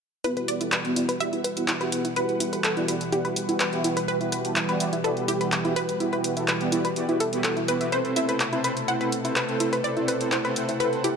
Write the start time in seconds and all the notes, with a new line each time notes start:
0.24 B2 E3 G3 B3 E4 F#4 G4 B4 F#5, closed hi-hat
0.37 B3 E4 F#4 G4 B4, closed hi-hat
0.48 D5, closed hi-hat
0.61 B3 E4 F#4 G4 A4, closed hi-hat
0.72 B4, clap, closed hi-hat
0.85 B3 E4 F#4 G4 D5, closed hi-hat
0.96 B3 E4 F#4 G4 D5, closed hi-hat
1.09 B4, closed hi-hat
1.20 B3 E4 F#4 G4 D5 E5, closed hi-hat
1.33 B3 E4 F#4 G4 B4, closed hi-hat
1.44 B4, closed hi-hat
1.57 B3 E4 F#4 G4 B4, closed hi-hat
1.68 E4, clap, closed hi-hat
1.81 B3 E4 F#4 G4 B4 E5, closed hi-hat
1.92 B3 E4 F#4 G4 B4, closed hi-hat
2.05 E4, closed hi-hat
2.16 B3 E4 F#4 G4 B4, closed hi-hat
2.29 B3 E4 F#4 G4 B4, closed hi-hat
2.40 E4, closed hi-hat
2.53 B3 E4 F#4 G4 A4 B4, closed hi-hat
2.64 A4, clap, closed hi-hat
2.77 B3 E4 F#4 G4 D5, closed hi-hat
2.88 B3 E4 F#4 G4 B4 D5, closed hi-hat
3.01 closed hi-hat
3.12 B3 E4 F#4 G4 D5, closed hi-hat
3.25 B3 E4 F#4 G4 B4, closed hi-hat
3.36 closed hi-hat
3.49 B3 E4 F#4 G4 B4, closed hi-hat
3.60 B4, clap, closed hi-hat
3.73 B3 E4 F#4 G4 E5, closed hi-hat
3.84 B3 E4 F#4 G4 B4, closed hi-hat
3.97 B4, closed hi-hat
4.08 B3 E4 F#4 G4 B4, closed hi-hat
4.21 B3 E4 F#4 G4 B4, closed hi-hat
4.32 B4, closed hi-hat
4.45 B3 E4 F#4 G4 A4, closed hi-hat
4.56 E4, clap, closed hi-hat
4.69 B3 E4 F#4 G4 B4 D5, closed hi-hat
4.80 B3 E4 F#4 G4 D5, closed hi-hat
4.93 E4, closed hi-hat
5.04 B3 E4 F#4 G4 A4 B4 D5, closed hi-hat
5.17 B3 E4 F#4 G4 B4, closed hi-hat
5.28 E4 G4, closed hi-hat
5.41 B3 E4 F#4 G4 B4, closed hi-hat
5.52 clap, closed hi-hat
5.65 B3 E4 F#4 G4 E5, closed hi-hat
5.76 B3 E4 F#4 G4 B4, closed hi-hat
5.89 closed hi-hat
6.00 B3 E4 F#4 G4 B4, closed hi-hat
6.13 B3 E4 F#4 G4 B4, closed hi-hat
6.24 closed hi-hat
6.37 B3 E4 F#4 G4 A4, closed hi-hat
6.48 B4, clap, closed hi-hat
6.61 B3 E4 F#4 G4 D5, closed hi-hat
6.72 B3 E4 F#4 G4 D5, closed hi-hat
6.85 B4, closed hi-hat
6.96 B3 E4 F#4 G4 D5, closed hi-hat
7.09 B3 E4 F#4 G4 B4, closed hi-hat
7.20 A4 E5, closed hi-hat
7.33 B3 E4 F#4 G4 B4, closed hi-hat
7.44 B3 E4 F#4 G4 A4 B4, clap, closed hi-hat
7.57 E4, closed hi-hat
7.68 B3 E4 F#4 G4 B4, closed hi-hat
7.81 B3 E4 F#4 G4 B4 E5, closed hi-hat
7.92 C3 A3 C4 E4 A4 B4 C5, closed hi-hat
8.05 C4 E4 A4 B4 C5, closed hi-hat
8.16 E4 E5, closed hi-hat
8.29 C4 E4 A4 B4 C5, closed hi-hat
8.40 clap, closed hi-hat
8.53 C4 E4 A4 B4 C5, closed hi-hat
8.64 C4 E4 A4 B4 C5, closed hi-hat
8.77 closed hi-hat
8.88 C4 E4 A4 B4 C5 F#5, closed hi-hat
9.01 C4 E4 A4 B4 C5, closed hi-hat
9.12 closed hi-hat
9.25 C4 E4 A4 B4 C5, closed hi-hat
9.36 B4, clap, closed hi-hat
9.49 C4 E4 A4 B4 C5, closed hi-hat
9.60 C4 E4 A4 B4 C5, closed hi-hat
9.73 B4, closed hi-hat
9.84 C4 E4 A4 B4 C5 D5 F#5, closed hi-hat
9.97 C4 E4 A4 B4 C5, closed hi-hat
10.08 B4, closed hi-hat
10.21 C4 E4 A4 B4 C5, closed hi-hat
10.32 E4 C5, clap, closed hi-hat
10.45 C4 E4 A4 B4 C5, closed hi-hat
10.56 C4 E4 A4 B4 C5, closed hi-hat
10.69 E4, closed hi-hat
10.80 C4 E4 A4 B4 C5, closed hi-hat
10.93 C4 E4 A4 B4 C5, closed hi-hat
11.04 E4 G4, closed hi-hat